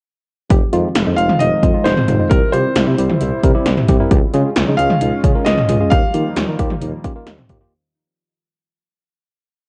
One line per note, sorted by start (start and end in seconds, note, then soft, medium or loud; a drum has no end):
0.50 0.60 F1 loud
0.50 2.29 D#3 medium
0.50 2.29 F3 medium
0.50 2.29 G#3 medium
0.50 4.07 C4 medium
0.50 2.29 F4 medium
0.50 0.66 G4 medium
0.50 kick loud
0.50 closed hi-hat medium
0.73 0.82 F2 medium
0.73 0.87 G#3 medium
0.73 0.87 C4 medium
0.73 0.88 D#4 medium
0.73 0.89 F4 medium
0.73 0.87 F4 medium
0.73 closed hi-hat medium
0.95 1.05 F1 loud
0.95 1.03 F4 medium
0.95 snare loud
0.95 closed hi-hat medium
1.07 1.16 F2 medium
1.07 1.22 D#4 medium
1.17 1.28 F1 medium
1.17 1.33 G#3 medium
1.17 1.33 C4 medium
1.17 1.33 D#4 medium
1.17 1.33 F4 medium
1.17 1.40 F5 loud
1.17 closed hi-hat medium
1.29 1.37 F4 medium
1.29 mid tom medium
1.39 1.50 F1 loud
1.39 1.56 D#4 medium
1.39 1.86 D#5 loud
1.39 closed hi-hat medium
1.63 1.73 F2 medium
1.63 1.70 G#3 medium
1.63 1.70 C4 medium
1.63 1.79 C4 medium
1.63 1.70 D#4 medium
1.63 1.70 F4 medium
1.63 kick medium
1.63 closed hi-hat medium
1.74 1.89 G#3 medium
1.74 1.89 C4 medium
1.74 1.89 D#4 medium
1.74 1.89 F4 medium
1.84 1.95 F1 loud
1.84 1.94 D#4 medium
1.84 2.27 C5 medium
1.84 snare loud
1.84 closed hi-hat medium
1.97 2.13 C4 medium
1.97 mid tom medium
2.08 2.18 F1 loud
2.08 2.16 G#3 medium
2.08 2.16 C4 medium
2.08 2.16 D#4 medium
2.08 2.16 F4 medium
2.08 closed hi-hat medium
2.08 mid tom medium
2.19 2.31 G#3 medium
2.19 2.31 C4 medium
2.19 2.31 D#4 medium
2.19 2.27 D#4 medium
2.19 2.31 F4 medium
2.30 2.40 C2 loud
2.30 4.09 G3 medium
2.30 4.09 E4 medium
2.30 2.47 G4 medium
2.30 2.51 A#4 medium
2.30 kick loud
2.30 closed hi-hat medium
2.52 2.63 C3 medium
2.52 2.68 G3 medium
2.52 2.68 C4 medium
2.52 2.68 E4 medium
2.52 2.69 F4 medium
2.52 2.68 G4 medium
2.52 3.39 C5 loud
2.52 closed hi-hat medium
2.76 2.85 C2 loud
2.76 2.84 F4 medium
2.76 snare loud
2.76 closed hi-hat medium
2.87 2.97 C3 medium
2.87 3.03 E4 medium
2.98 3.08 C2 medium
2.98 3.13 G3 medium
2.98 3.13 C4 medium
2.98 3.13 E4 medium
2.98 3.13 G4 medium
2.98 closed hi-hat medium
3.10 3.18 F4 medium
3.10 mid tom medium
3.21 3.31 C2 loud
3.21 3.37 E4 medium
3.21 closed hi-hat medium
3.43 3.53 C3 loud
3.43 3.51 G3 medium
3.43 3.51 C4 medium
3.43 3.59 C4 medium
3.43 3.51 E4 medium
3.43 3.51 A#4 medium
3.43 kick medium
3.43 closed hi-hat medium
3.55 3.69 G3 medium
3.55 3.69 C4 medium
3.55 3.69 E4 medium
3.55 3.69 G4 medium
3.66 3.76 C2 medium
3.66 3.74 E4 medium
3.66 snare loud
3.66 closed hi-hat medium
3.77 3.93 C4 medium
3.77 mid tom medium
3.89 3.98 C2 medium
3.89 3.96 G3 medium
3.89 3.96 C4 medium
3.89 3.96 E4 medium
3.89 3.96 G4 medium
3.89 kick medium
3.89 closed hi-hat medium
3.89 mid tom medium
4.00 4.11 G3 medium
4.00 4.11 C4 medium
4.00 4.11 E4 medium
4.00 4.08 E4 medium
4.00 4.11 A#4 medium
4.11 4.21 C#2 loud
4.11 5.90 G#3 medium
4.11 5.90 C#4 medium
4.11 7.68 F4 medium
4.11 4.27 G4 medium
4.11 kick loud
4.11 closed hi-hat medium
4.34 4.43 C#3 loud
4.34 4.48 G#3 medium
4.34 4.48 C#4 medium
4.34 4.50 F4 medium
4.34 4.48 F4 medium
4.34 4.48 G#4 loud
4.34 closed hi-hat medium
4.56 4.66 C#2 loud
4.56 4.64 F4 medium
4.56 snare loud
4.56 closed hi-hat medium
4.68 4.77 C#3 loud
4.68 4.83 D#4 medium
4.77 4.88 C#2 medium
4.77 4.94 G#3 medium
4.77 4.94 C#4 medium
4.77 4.94 F4 medium
4.77 4.94 G#4 medium
4.77 5.20 F5 loud
4.77 closed hi-hat medium
4.90 4.98 F4 medium
4.90 mid tom medium
5.01 5.11 C#2 loud
5.01 5.17 D#4 medium
5.01 closed hi-hat medium
5.24 5.33 C#3 loud
5.24 5.31 G#3 medium
5.24 5.31 C#4 medium
5.24 5.40 C#4 medium
5.24 5.31 F4 medium
5.24 5.31 G#4 medium
5.24 kick medium
5.24 closed hi-hat medium
5.35 5.50 G#3 medium
5.35 5.50 C#4 medium
5.35 5.50 F4 medium
5.35 5.50 A#4 medium
5.45 5.56 C#2 medium
5.45 5.54 F4 medium
5.45 5.92 D#5 medium
5.45 snare loud
5.45 closed hi-hat medium
5.58 5.73 C#4 medium
5.58 mid tom medium
5.69 5.79 C#2 loud
5.69 5.76 G#3 medium
5.69 5.76 C#4 medium
5.69 5.76 F4 medium
5.69 5.76 G#4 medium
5.69 closed hi-hat medium
5.69 mid tom medium
5.80 5.92 G#3 medium
5.80 5.92 C#4 medium
5.80 5.88 F4 medium
5.80 5.92 F4 medium
5.80 5.92 G#4 medium
5.90 6.01 D#2 loud
5.90 7.70 D#3 medium
5.90 7.70 F3 medium
5.90 7.70 G3 medium
5.90 7.70 A#3 medium
5.90 6.07 G4 medium
5.90 6.55 F5 loud
5.90 kick loud
5.90 closed hi-hat medium
6.14 6.24 D#3 medium
6.14 6.29 A#3 medium
6.14 6.29 D#4 medium
6.14 6.30 F4 medium
6.14 6.29 F4 medium
6.14 6.29 G4 medium
6.14 closed hi-hat medium
6.36 6.46 D#2 loud
6.36 6.45 F4 medium
6.36 snare loud
6.36 closed hi-hat medium
6.48 6.58 D#3 medium
6.48 6.64 D#4 medium
6.59 6.69 D#2 loud
6.59 6.74 A#3 medium
6.59 6.74 D#4 medium
6.59 6.74 F4 medium
6.59 6.74 G4 loud
6.59 kick medium
6.59 closed hi-hat medium
6.70 6.79 F4 medium
6.70 mid tom medium
6.82 6.91 D#2 loud
6.82 6.98 D#4 medium
6.82 closed hi-hat medium
7.04 7.12 A#3 medium
7.04 7.20 C#4 medium
7.04 7.12 D#4 medium
7.04 7.12 F4 medium
7.04 7.12 G4 medium
7.04 kick medium
7.04 closed hi-hat medium
7.16 7.30 A#3 medium
7.16 7.30 D#4 medium
7.16 7.30 F4 medium
7.16 7.30 A#4 medium
7.27 7.36 D#2 medium
7.27 7.35 D#4 medium
7.27 snare loud
7.27 closed hi-hat medium
7.38 7.54 C4 medium
7.38 mid tom medium
7.49 7.59 D#2 medium
7.49 7.57 A#3 medium
7.49 7.57 D#4 medium
7.49 7.57 F4 medium
7.49 7.57 G4 medium
7.49 kick medium
7.49 closed hi-hat medium
7.49 mid tom medium
7.61 7.72 A#3 medium
7.61 7.69 D#4 medium
7.61 7.72 D#4 medium
7.61 7.72 F4 medium
7.61 7.72 G4 medium